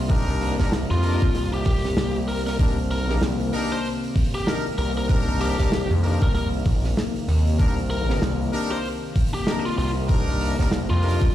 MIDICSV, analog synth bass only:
0, 0, Header, 1, 2, 480
1, 0, Start_track
1, 0, Key_signature, -3, "minor"
1, 0, Tempo, 625000
1, 74, Time_signature, 4, 2, 24, 8
1, 8716, End_track
2, 0, Start_track
2, 0, Title_t, "Analog synth bass"
2, 0, Program_c, 0, 38
2, 0, Note_on_c, 0, 36, 95
2, 196, Note_off_c, 0, 36, 0
2, 218, Note_on_c, 0, 36, 98
2, 434, Note_off_c, 0, 36, 0
2, 459, Note_on_c, 0, 36, 98
2, 675, Note_off_c, 0, 36, 0
2, 698, Note_on_c, 0, 41, 97
2, 915, Note_off_c, 0, 41, 0
2, 939, Note_on_c, 0, 36, 100
2, 1019, Note_off_c, 0, 36, 0
2, 1032, Note_on_c, 0, 36, 101
2, 1498, Note_off_c, 0, 36, 0
2, 1515, Note_on_c, 0, 36, 101
2, 1979, Note_off_c, 0, 36, 0
2, 1992, Note_on_c, 0, 36, 101
2, 2323, Note_off_c, 0, 36, 0
2, 2323, Note_on_c, 0, 35, 101
2, 2458, Note_off_c, 0, 35, 0
2, 2474, Note_on_c, 0, 36, 101
2, 2699, Note_off_c, 0, 36, 0
2, 3674, Note_on_c, 0, 36, 97
2, 4034, Note_off_c, 0, 36, 0
2, 4057, Note_on_c, 0, 36, 98
2, 4274, Note_off_c, 0, 36, 0
2, 4296, Note_on_c, 0, 36, 101
2, 4514, Note_off_c, 0, 36, 0
2, 4537, Note_on_c, 0, 41, 98
2, 4754, Note_off_c, 0, 41, 0
2, 4777, Note_on_c, 0, 36, 99
2, 4858, Note_off_c, 0, 36, 0
2, 4875, Note_on_c, 0, 36, 101
2, 5099, Note_off_c, 0, 36, 0
2, 5113, Note_on_c, 0, 34, 95
2, 5338, Note_off_c, 0, 34, 0
2, 5594, Note_on_c, 0, 39, 93
2, 5818, Note_off_c, 0, 39, 0
2, 5833, Note_on_c, 0, 36, 98
2, 6298, Note_off_c, 0, 36, 0
2, 6313, Note_on_c, 0, 36, 102
2, 6538, Note_off_c, 0, 36, 0
2, 7513, Note_on_c, 0, 36, 97
2, 7874, Note_off_c, 0, 36, 0
2, 7896, Note_on_c, 0, 36, 100
2, 8114, Note_off_c, 0, 36, 0
2, 8135, Note_on_c, 0, 36, 101
2, 8353, Note_off_c, 0, 36, 0
2, 8377, Note_on_c, 0, 41, 97
2, 8594, Note_off_c, 0, 41, 0
2, 8614, Note_on_c, 0, 36, 100
2, 8696, Note_off_c, 0, 36, 0
2, 8716, End_track
0, 0, End_of_file